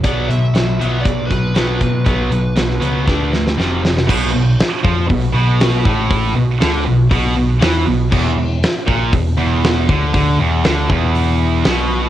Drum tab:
CC |----------------|----------------|x---------------|----------------|
HH |x-x-x-x-x-x-x-x-|x-x-x-x---------|----o---o---o---|o---o---o---o---|
SD |----o-------o---|----oo--o-ooo-oo|----o-------o---|----o-------o---|
BD |o-------o-o---o-|o-------o-------|o-----o-o-----o-|o-------o-------|

CC |x---------------|----------------|
HH |----o---o---o---|o---o---o---o---|
SD |----o-------o---|----o-------o---|
BD |o-----o-o-----o-|o-----o---------|